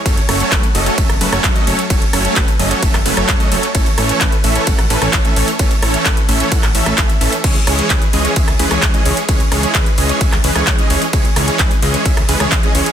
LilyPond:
<<
  \new Staff \with { instrumentName = "Supersaw synth" } { \time 4/4 \key cis \minor \tempo 4 = 130 <fis a cis' a' cis''>16 r16 <fis a cis' a' cis''>16 <fis a cis' a' cis''>16 <fis a cis' a' b'>16 r16 <fis a cis' a' dis''>16 <fis a cis' a' cis''>16 <fis a cis' e''>16 r16 <fis a cis' a' b'>16 <fis a cis' a' cis''>8 <fis a cis' a' dis''>16 <fis a cis' a' cis''>16 r16 | <fis a cis' a' cis''>16 r16 <fis a cis' a' cis''>16 <fis a cis' a' cis''>16 <fis a cis' a' b'>16 r16 <fis a cis' a' dis''>16 <fis a cis' a' cis''>16 <fis a cis' a' e''>16 r16 <fis a cis' a' b'>16 <fis a cis' a' cis''>8 <fis a cis' a' dis''>16 <fis a cis' a' cis''>16 r16 | <e a cis' a' cis''>16 r16 <e a cis' a' cis''>16 <e a cis' a' cis''>16 r8 <e a cis' a' e''>16 <e a cis' a' cis''>16 <e a fis''>16 r16 <e a cis' a' b'>16 <e a cis' a' cis''>8 <e a cis' a' e''>16 <e a cis' a' cis''>16 r16 | <e a cis' a' cis''>16 r16 <e a cis' a' cis''>16 <e a cis' a' cis''>16 <e a cis' a' b'>16 r16 <e a cis' a' e''>16 <e a cis' a' cis''>16 <e a cis' a' fis''>16 r16 <e a cis' a' e''>8 <e a cis' a'>16 r16 <e a cis' a' e''>16 r16 |
<e gis cis' gis' cis''>16 r16 <e gis cis' gis' cis''>16 <e gis cis' gis' cis''>16 r8 <e gis cis' gis' dis''>16 <e gis cis' gis' cis''>16 e16 r16 <e gis cis' gis' b'>16 <e gis cis' gis' cis''>8 <e gis cis' gis' dis''>16 <e gis cis' gis' cis''>16 r16 | <e gis cis' gis' cis''>16 r16 <e gis cis' gis' cis''>16 <e gis cis' gis' cis''>16 <e gis cis' gis' b'>16 r16 <e gis cis' gis' dis''>16 <e gis cis' gis' cis''>16 <e gis cis' gis' e''>16 r16 <e gis cis' gis' b'>16 <e gis cis' gis' cis''>8 <e gis cis' gis' dis''>16 <e gis cis' gis' cis''>16 r16 | <e gis cis' gis' cis''>16 r16 <e gis cis' gis' cis''>16 <e gis cis' gis' cis''>16 <e gis b'>16 r16 <e gis cis' gis' dis''>16 <e gis cis' gis' cis''>16 <e gis cis' gis'>16 r16 <e gis cis' gis' b'>16 <e gis cis' gis' cis''>8 <e gis cis' gis' dis''>16 <e gis cis' gis' cis''>16 r16 | }
  \new Staff \with { instrumentName = "Analog synth bass" } { \clef bass \time 4/4 \key cis \minor fis,,16 r16 fis,,16 r16 fis,,16 r16 fis,,16 r16 fis,,16 fis,,16 fis,,16 fis,,16 fis,,16 r16 fis,,16 r16 | fis,,16 r16 fis,,16 r16 fis,,16 r16 fis,,16 r16 fis,,16 fis,,16 fis,,16 fis,,16 fis,,16 r16 fis,,16 r16 | a,,16 r16 a,,16 r16 a,,16 r16 a,,16 r16 a,,16 a,,16 a,,16 a,,16 a,,16 r16 a,,16 r16 | a,,16 r16 a,,16 r16 a,,16 r16 a,,16 r16 e,16 a,,16 a,,16 a,,16 a,,16 r16 a,,16 r16 |
cis,16 r16 cis,16 r16 cis,16 r16 cis,16 r16 cis,16 cis,16 cis,16 cis,16 cis,16 r16 cis,16 r16 | cis,16 r16 cis,16 r16 cis,16 r16 cis,16 r16 cis,16 cis,16 cis,16 cis,16 cis,16 r16 cis,16 r16 | cis,16 r16 cis,16 r16 cis,16 r16 cis,16 r16 cis,16 cis,16 cis,16 cis,16 cis,16 r16 cis,16 r16 | }
  \new DrumStaff \with { instrumentName = "Drums" } \drummode { \time 4/4 <hh bd cymr>16 hh16 <hho ss>16 hh16 <hc hh bd cymr>16 hh16 hho16 hh16 <hh bd cymr>16 <hh ss>16 hho16 <hh ss>16 <hc hh bd cymr>16 hh16 hho16 hh16 | <hh bd cymr>16 hh16 <hho ss>16 hh16 <hc hh bd cymr>16 hh16 hho16 hh16 <hh bd cymr>16 <hc hh ss>16 hho16 <hh ss>16 <hc hh bd cymr>16 hh16 hho16 hh16 | <hh bd cymr>16 hh16 <hho ss>16 hh16 <hc hh bd cymr>16 hh16 hho16 hh16 <hh bd cymr>16 <hh ss>16 hho16 <hh ss>16 <hc hh bd cymr>16 hh16 hho16 hh16 | <hh bd cymr>16 hh16 <hho ss>16 hh16 <hc hh bd cymr>16 hh16 hho16 hh16 <hh bd cymr>16 <hc hh ss>16 hho16 <hh ss>16 <hc hh bd cymr>16 hh16 hho16 hh16 |
<cymc hh bd cymr>16 hh16 <hho ss>16 hh16 <hc hh bd cymr>16 hh16 hho16 hh16 <hh bd cymr>16 <hh ss>16 hho16 <hh ss>16 <hc hh bd cymr>16 hh16 hho16 hh16 | <hh bd cymr>16 hh16 <hho ss>16 hh16 <hc hh bd cymr>16 hh16 hho16 hh16 <hh bd cymr>16 <hc hh ss>16 hho16 <hh ss>16 <hc hh bd cymr>16 hh16 hho16 hh16 | <hh bd cymr>16 hh16 <hho ss>16 hh16 <hc hh bd cymr>16 hh16 hho16 hh16 <hh bd cymr>16 <hh ss>16 hho16 <hh ss>16 <hc hh bd cymr>16 hh16 hho16 hh16 | }
>>